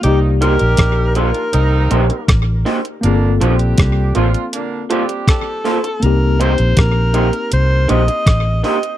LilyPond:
<<
  \new Staff \with { instrumentName = "Alto saxophone" } { \time 4/4 \key c \dorian \tempo 4 = 80 g'8 bes'4 bes'4. r4 | r2. a'4 | bes'8 c''8 bes'4 c''8 ees''4 ees''8 | }
  \new Staff \with { instrumentName = "Clean electric guitar" } { \time 4/4 \key c \dorian r8 <bes ees' g' c''>8 r8 <bes ees' g' c''>8 r8 <bes ees' g' c''>8 r8 <bes ees' g' c''>8 | r8 <bes f' a' c''>8 r8 <bes f' a' c''>8 r8 <bes f' a' c''>8 r8 <bes f' a' c''>8 | r8 <bes ees' g' c''>8 r8 <bes ees' g' c''>8 r8 <bes ees' g' c''>8 r8 <bes ees' g' c''>8 | }
  \new Staff \with { instrumentName = "Tine electric piano" } { \time 4/4 \key c \dorian <bes ees' g' d''>1 | <bes c' f' aes' a'>1 | <bes c' ees' g'>1 | }
  \new Staff \with { instrumentName = "Horn section" } { \time 4/4 \key c \dorian <ees bes c' ees'>8 <g c' ees' g'>4 <f bes d' f'>8 <ees bes c' ees'>4 r4 | <d bes d'>8 <g c' d' g'>4 <f c' d' f'>8 <d bes d'>8 <g c' d' g'>4 r8 | r1 | }
  \new Staff \with { instrumentName = "Fingered electric bass" } { \clef bass \time 4/4 \key c \dorian c,8. bes,,16 bes,,8. r16 c,8 bes,,16 r16 a,,8 r8 | g,,8 bes,,8 c,8 a,,16 r2 r16 | c,8. bes,,16 bes,,8. r16 c,8 bes,,16 r16 a,,8 r8 | }
  \new DrumStaff \with { instrumentName = "Drums" } \drummode { \time 4/4 hh8 hh16 hh16 <hh bd ss>8 hh16 hh16 hh8 hh16 hh16 <hh bd ss>8 hho16 hh16 | hh8 hh16 hh16 <hh bd ss>8 hh16 hh16 hh8 hh16 hh16 <hh bd ss>8 hho16 hh16 | hh8 hh16 hh16 <hh bd ss>8 hh16 hh16 hh8 hh16 hh16 <hh bd ss>8 hho16 hh16 | }
>>